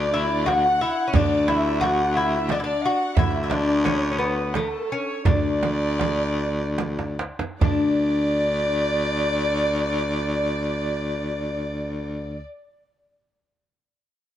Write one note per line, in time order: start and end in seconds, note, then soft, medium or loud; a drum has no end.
0.00 0.89 D2 loud
0.00 0.13 D4 loud
0.00 0.14 D5 medium
0.00 0.46 D5 medium
0.13 0.45 E4 loud
0.13 0.46 E5 medium
0.45 0.81 F#4 loud
0.45 0.83 F#5 medium
0.45 1.14 F#5 loud
0.45 tombak tek medium
0.45 frame drum medium
0.81 1.09 E4 loud
0.81 1.13 E5 medium
1.08 1.15 C#4 medium
1.13 2.92 D2 loud
1.13 1.48 D4 loud
1.13 1.50 D5 medium
1.13 1.48 D5 medium
1.13 frame drum loud
1.13 tombak dum medium
1.48 1.80 E4 medium
1.48 1.82 E5 medium
1.48 1.84 E5 loud
1.48 tombak tek medium
1.48 frame drum medium
1.81 2.16 F#4 loud
1.81 2.16 F#5 medium
1.81 2.19 F#5 medium
1.81 tombak tek medium
1.81 frame drum medium
2.14 2.51 E4 loud
2.14 2.49 E5 medium
2.14 2.53 E5 medium
2.49 2.58 D4 loud
2.49 2.62 D5 medium
2.49 2.64 D5 medium
2.49 tombak tek medium
2.49 frame drum medium
2.60 2.63 E4 medium
2.60 2.82 D5 medium
2.64 2.84 D4 medium
2.64 2.86 D5 medium
2.83 3.18 F#4 loud
2.83 3.17 F#5 medium
2.83 3.19 F#5 medium
3.16 4.75 D2 loud
3.16 3.42 E4 loud
3.16 3.41 E5 medium
3.16 3.54 E5 medium
3.16 frame drum loud
3.16 tombak dum medium
3.42 3.49 E4 medium
3.42 3.51 E5 medium
3.50 3.86 D4 medium
3.50 3.85 D5 medium
3.50 tombak tek medium
3.50 frame drum medium
3.85 4.10 C#4 medium
3.85 4.20 C#5 medium
3.85 4.25 C#5 medium
3.85 tombak tek medium
3.85 frame drum medium
4.12 4.18 C#4 medium
4.18 4.55 B3 medium
4.18 4.55 B4 medium
4.54 4.92 A3 medium
4.54 4.90 A4 medium
4.54 5.23 A4 medium
4.54 tombak tek medium
4.54 frame drum medium
4.91 5.25 C#4 medium
4.91 5.27 C#5 medium
5.25 7.31 D2 loud
5.25 7.15 D4 medium
5.25 7.15 D5 medium
5.25 7.20 D5 medium
5.25 tombak dum loud
5.25 frame drum loud
5.63 tombak tek medium
5.63 frame drum medium
5.99 tombak tek medium
5.99 frame drum medium
6.78 tombak tek medium
6.78 frame drum medium
6.99 tombak ka medium
7.19 tombak tek medium
7.39 tombak ka medium
7.60 12.41 D2 loud
7.60 12.42 D4 medium
7.60 12.41 D5 loud
7.60 12.42 D5 loud
7.60 frame drum medium
7.60 tombak dum medium